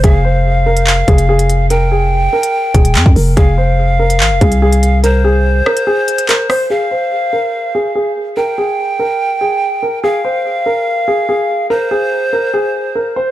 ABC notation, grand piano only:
X:1
M:4/4
L:1/8
Q:1/4=144
K:Fm
V:1 name="Grand piano"
A c2 B2 A A2 | B A2 B2 A2 B | A c2 B2 A A2 | B A2 B A2 B c |
A c2 B2 A A2 | B A2 B2 A2 B | A c2 B2 A A2 | B A2 B A2 B c |]